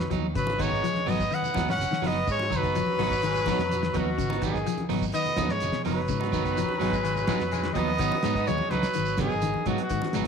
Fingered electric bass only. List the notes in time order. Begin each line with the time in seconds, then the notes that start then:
0.11 D#2
0.36 G#1
0.60 G#1
1.07 G#1
1.57 D#2
1.66 G#2
1.77 F#1
1.90 muted fingered electric bass stroke
2.02 F#1
2.27 G#2
2.51 F#1
2.86 muted fingered electric bass stroke
2.98 G#1
3.59 F2
3.94 D#2
4.18 G#1
4.42 G#1
4.90 G#1
5.37 D#2
5.51 G#2
5.62 F#1
5.75 muted fingered electric bass stroke
5.87 F#1
6.09 G#2
6.33 F#1
6.69 muted fingered electric bass stroke
6.81 G#1
7.40 F2
7.75 D#2
7.99 G#1
8.25 G#2
8.50 D#2
8.73 C#2
8.98 G#1
9.34 G#1
9.66 G#2
9.90 G#2
10.16 G#1